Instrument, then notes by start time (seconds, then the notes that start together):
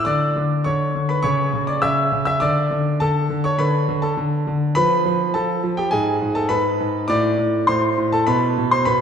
grand piano
0.05 D3 D5 D6
0.36 D3
0.64 D3 C#5 C#6
0.95 D3
1.09 B4 B5
1.22 C#3 C#5 C#6
1.53 C#3
1.67 D5 D6
1.82 C#3 E5 E6
2.12 C#3
2.25 E5 E6
2.40 D3 D5 D6
2.71 D3
3.00 D3 A4 A5
3.30 D3
3.44 C#5 C#6
3.59 D3 B4 B5
3.89 D3
4.02 A4 A5
4.17 D3
4.47 D3
4.75 F3 B4 B5
5.06 F3
5.34 F3 A4 A5
5.64 F3
5.77 G4 G5
5.91 G#2 G#4 G#5
6.22 G#2
6.35 A4 A5
6.49 G#2 B4 B5
6.80 G#2
7.08 A2 D5 D6
7.39 A2
7.67 A2 C5 C6
7.98 A2
8.12 A4 A5
8.27 B2 B4 B5
8.58 B2
8.71 C5 C6
8.85 B2 B4 B5